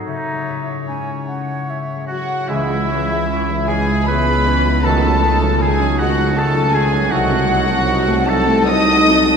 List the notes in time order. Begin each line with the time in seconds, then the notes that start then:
0.05 C#3 D#4 C#5 E5
0.34 G#3
0.61 E4
0.88 G#3 C#4 G#5
1.16 C#4
1.28 F#5
1.42 G#3
1.68 E4 E5
1.96 G#3
2.07 F#3 F#4 F#5
2.23 G#4
2.48 C#2 C#3 E3 G#3 C#4 E4 E5
2.70 G#3 E4
2.89 E3 G#3 C#4
3.10 G#3 E4
3.29 E3 C#4
3.49 G#3 E4
3.68 E3 G#3 C#4 E4 G#4 G#5
3.88 G#3 E4
4.06 E3 B3 C#4 G#4 B4 B5
4.27 G#3 E4
4.46 E3 C#4 E4
4.65 G#3 E4
4.83 C#3 D#3 F#3 A3 D#4 A4 A5
5.03 F#3 C#4
5.22 D#3 C#4 D#4
5.41 F#3 C#4
5.61 D#3 G#3 D#4 G#4 G#5
5.80 F#3 C#4
5.98 D#3 F#3 D#4 F#4 F#5
6.17 F#3 C#4
6.36 D#3 A3 D#4 A4 A5
6.54 F#3 C#4
6.73 D#3 G#3 D#4 F#4 G#4 G#5
6.92 F#3 C#4
7.09 C2 C3 D#3 F#3 A3 D#4 F#4 F#5
7.30 A3 C4
7.47 F#3 C4 D#4
7.66 A3 C4
7.85 F#3 D#4
8.05 A3 C4
8.26 F#3 A3 D#4 F#4 A4 A5
8.47 A3 C4
8.68 F#3 D#4 A4 D#5 D#6
8.88 A3 C4
9.07 F#3 D#4 F#4
9.25 A3 C4